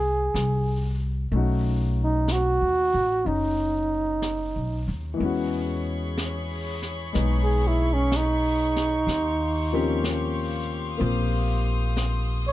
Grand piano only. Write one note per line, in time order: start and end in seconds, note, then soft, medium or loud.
0.00 1.29 A#3 soft
0.00 1.30 C4 soft
0.00 1.33 D#4 soft
0.00 1.34 G5 soft
1.32 5.20 A3 soft
1.32 3.23 C#4 soft
1.32 3.26 D#4 soft
1.36 5.23 F#4 soft
3.24 5.20 C#4 soft
3.24 5.21 D#4 soft
5.14 9.04 E3 soft
5.14 7.11 G#3 soft
5.19 7.13 B3 soft
5.19 9.09 C#4 soft
5.25 9.10 F#4 medium
7.13 9.07 G#3 soft
7.13 9.07 B3 soft
7.13 9.07 D#4 soft
9.73 12.52 F3 soft
9.73 10.96 A#3 soft
9.73 10.98 C4 soft
9.73 12.52 C#4 soft
9.73 12.52 G4 medium
10.97 12.52 A#3 soft
10.97 12.52 C4 soft
10.97 12.52 F4 soft